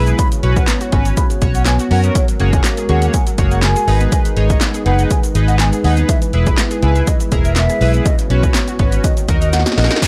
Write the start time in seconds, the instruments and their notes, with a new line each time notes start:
Already playing: fingered electric bass B1, glass harmonica G#3 E4 B4, analog polysynth E4 G#4 B4
0.07 synth pluck B3, closed hi-hat, shaker
0.18 synth pluck C#3, glass harmonica B3 F#4 C#5, flute B5, kick, closed hi-hat, shaker
0.32 synth pluck C#3, closed hi-hat, shaker
0.43 fingered electric bass B1, analog polysynth C#4 F#4 B4, synth pluck C#5, closed hi-hat
0.56 synth pluck C#5, flute F#5, kick, closed hi-hat, shaker
0.67 synth pluck B3, snare, clap, closed hi-hat, shaker
0.81 synth pluck F#4, closed hi-hat, shaker
0.92 fingered electric bass G#1, synth pluck B3, analog polysynth C#4 F#4 B4, flute G#5, kick, closed hi-hat
1.05 synth pluck C#5, closed hi-hat, shaker
1.17 synth pluck C#3, flute B5, kick, closed hi-hat, shaker
1.30 synth pluck C#3, closed hi-hat, shaker
1.42 fingered electric bass B1, analog polysynth C#4 F#4 C#5, synth pluck C#5, kick, closed hi-hat, shaker
1.55 synth pluck C#5, flute F#5, closed hi-hat, shaker
1.65 synth pluck B3, flute G#5, snare, clap, closed hi-hat, shaker
1.79 synth pluck F#4, closed hi-hat, shaker
1.91 fingered electric bass F#2, analog polysynth C#4 F#4 A#4, synth pluck C#5, flute F#5, open hi-hat
2.03 synth pluck B3, closed hi-hat, shaker
2.15 synth pluck F#3, glass harmonica G#3 A#4, flute C#5, kick, closed hi-hat, shaker
2.28 synth pluck F#3, closed hi-hat, shaker
2.40 fingered electric bass F#1, analog polysynth A#3 C#4 F#4 G#4 C#5, synth pluck F#5, closed hi-hat
2.53 synth pluck F#5, flute G#5, kick, closed hi-hat, shaker
2.64 synth pluck A#3, snare, clap, closed hi-hat, shaker
2.77 synth pluck G#4, closed hi-hat, shaker
2.89 fingered electric bass D#2, analog polysynth A#3 C#4 F#4 G#4 C#5, synth pluck A#3, flute F#5, closed hi-hat
3.02 synth pluck F#5, closed hi-hat, shaker
3.13 synth pluck F#3, flute G#5, kick, closed hi-hat, shaker
3.27 synth pluck F#3, closed hi-hat, shaker
3.38 fingered electric bass F#1, analog polysynth A#3 C#4 F#4 G#4 C#5, synth pluck F#5, kick, closed hi-hat, shaker
3.51 flute F#5, synth pluck F#5, closed hi-hat, shaker
3.62 synth pluck A#3, flute G#5, snare, clap, closed hi-hat, shaker
3.76 synth pluck G#4, closed hi-hat, shaker
3.87 fingered electric bass G#1, analog polysynth D#4 G#4 B4, glass harmonica D#4 B4, synth pluck D#5, open hi-hat
4.00 synth pluck B3, closed hi-hat, shaker
4.12 synth pluck D#3, flute G#5, kick, closed hi-hat, shaker
4.25 synth pluck D#3, closed hi-hat, shaker
4.37 fingered electric bass G#1, analog polysynth D#4 G#4 C#5, synth pluck D#5, closed hi-hat
4.50 flute D#5, synth pluck D#5, kick, closed hi-hat, shaker
4.61 synth pluck B3, snare, clap, closed hi-hat, shaker
4.74 synth pluck G#4, closed hi-hat, shaker
4.86 fingered electric bass F#1, synth pluck B3, analog polysynth D#4 G#4 B4, flute F#5, closed hi-hat
4.99 synth pluck D#5, closed hi-hat, shaker
5.10 synth pluck D#3, flute G#5, kick, closed hi-hat, shaker
5.23 synth pluck D#3, closed hi-hat, shaker
5.35 fingered electric bass G#1, analog polysynth D#4 G#4 B4, synth pluck D#5, closed hi-hat, shaker
5.48 synth pluck D#5, flute F#5, closed hi-hat, shaker
5.59 synth pluck B3, flute G#5, snare, clap, closed hi-hat, shaker
5.73 synth pluck G#4, closed hi-hat, shaker
5.84 fingered electric bass D#2, analog polysynth D#4 G#4 B4, synth pluck D#5, flute F#5, open hi-hat
5.97 synth pluck B3, closed hi-hat, shaker
6.09 synth pluck E3, glass harmonica E4, flute E5, kick, closed hi-hat, shaker
6.22 synth pluck E3, closed hi-hat, shaker
6.33 fingered electric bass E1, analog polysynth E4 G#4 B4, synth pluck E5, closed hi-hat
6.46 synth pluck E5, flute B5, kick, closed hi-hat, shaker
6.57 synth pluck B3, snare, clap, closed hi-hat, shaker
6.71 synth pluck G#4, closed hi-hat, shaker
6.82 fingered electric bass C#2, synth pluck B3, analog polysynth E4 G#4 B4, flute G#5, closed hi-hat
6.95 synth pluck E5, closed hi-hat, shaker
7.07 synth pluck E3, flute D#5, kick, closed hi-hat, shaker
7.20 synth pluck E3, closed hi-hat, shaker
7.31 fingered electric bass E1, analog polysynth E4 G#4 A#4, synth pluck E5, kick, closed hi-hat, shaker
7.45 flute E5, synth pluck E5, closed hi-hat, shaker
7.56 synth pluck B3, flute E5, snare, clap, closed hi-hat, shaker
7.69 synth pluck G#4, closed hi-hat, shaker
7.81 fingered electric bass B1, analog polysynth E4 G#4 B4, synth pluck E5, open hi-hat
7.93 synth pluck B3, closed hi-hat, shaker
8.05 synth pluck C#3, glass harmonica B3 F#4 C#5, flute D#5, kick, closed hi-hat, shaker
8.19 synth pluck C#3, closed hi-hat, shaker
8.30 fingered electric bass B1, analog polysynth C#4 F#4 B4, synth pluck C#5, closed hi-hat
8.43 flute C#5, synth pluck C#5, kick, closed hi-hat, shaker
8.54 synth pluck B3, snare, clap, closed hi-hat, shaker
8.68 synth pluck F#4, closed hi-hat, shaker
8.79 fingered electric bass G#1, synth pluck B3, analog polysynth C#4 F#4 B4, flute C#5, kick, closed hi-hat
8.92 synth pluck C#5, closed hi-hat, shaker
9.04 synth pluck D#3, glass harmonica A#3 D#5, flute D#5, kick, closed hi-hat, shaker
9.17 synth pluck D#3, closed hi-hat, shaker
9.28 fingered electric bass D#2, analog polysynth D#4 F#4 A#4, synth pluck D#5, kick, closed hi-hat, shaker
9.41 flute D#5, synth pluck D#5, closed hi-hat, shaker
9.53 synth pluck A#3, flute F#5, snare, closed hi-hat, shaker
9.60 snare
9.66 synth pluck F#4, snare, closed hi-hat, shaker
9.72 snare
9.77 fingered electric bass A#1, analog polysynth D#4 F#4 A#4, flute D#5, synth pluck D#5, snare, open hi-hat
9.84 snare
9.90 synth pluck A#3, snare, closed hi-hat, shaker
9.96 snare
10.02 analog polysynth G#3 D#4 F#4 B4, kick, closed hi-hat, downlifter